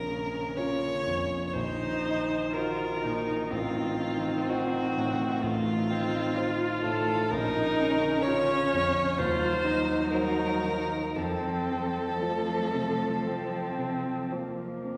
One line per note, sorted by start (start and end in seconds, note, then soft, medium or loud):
0.00 1.51 A#1 soft
0.00 1.51 C#3 medium
0.00 0.58 A#4 medium
0.08 0.87 A#3 soft
0.57 1.02 C#4 soft
0.57 1.03 F4 soft
0.57 1.47 C#5 medium
1.07 1.56 F2 soft
1.47 1.54 C#5 medium
1.53 3.49 A#1 soft
1.53 7.28 D#3 medium
1.53 2.50 D#4 medium
1.53 2.55 C5 medium
2.06 2.84 D#4 soft
2.52 3.04 F4 medium
2.52 3.00 F#4 soft
2.52 3.52 A#4 medium
2.52 3.00 C5 soft
3.02 3.53 A#2 soft
3.02 3.52 D#4 medium
3.51 5.39 A1 soft
3.51 3.98 C4 medium
3.51 4.51 F4 medium
3.99 5.43 C4 medium
3.99 4.77 D#4 soft
4.49 4.92 F4 soft
4.49 5.44 F#4 medium
4.49 4.93 C5 soft
4.97 5.72 A2 soft
5.41 7.28 A1 soft
5.41 5.91 A3 medium
5.41 6.83 F4 medium
5.90 6.37 C4 medium
5.90 6.66 D#4 soft
6.36 7.32 F4 medium
6.36 6.81 F4 soft
6.36 6.81 C5 soft
6.83 7.31 A2 soft
6.83 7.32 A4 medium
7.30 9.15 A#1 medium
7.30 9.15 C#3 medium
7.30 8.26 D#4 medium
7.30 8.23 A#4 medium
7.80 8.54 C#4 soft
8.22 9.20 C#4 medium
8.22 9.19 C#5 medium
8.27 8.69 F4 soft
8.27 8.69 C#5 soft
8.74 9.20 F2 soft
9.18 11.13 D#2 medium
9.18 11.13 F#3 medium
9.18 9.67 F4 medium
9.18 10.12 C5 medium
9.64 10.43 D#4 soft
9.64 11.19 D#4 medium
10.11 10.60 F#4 soft
10.11 11.17 A#4 medium
10.11 10.60 C5 soft
10.65 11.17 D#3 soft
11.15 13.22 F2 soft
11.15 14.97 F3 soft
11.15 12.12 C4 medium
11.15 14.30 A4 medium
11.71 12.54 C4 soft
12.21 13.28 A3 soft
12.21 12.70 F4 soft
12.21 12.70 C5 soft
12.74 13.58 C3 soft
13.27 14.34 C4 medium
13.27 14.11 C4 soft
13.79 14.63 C3 soft
14.31 14.97 A#3 soft
14.31 14.80 F4 soft
14.31 14.80 C5 soft
14.84 14.97 C4 soft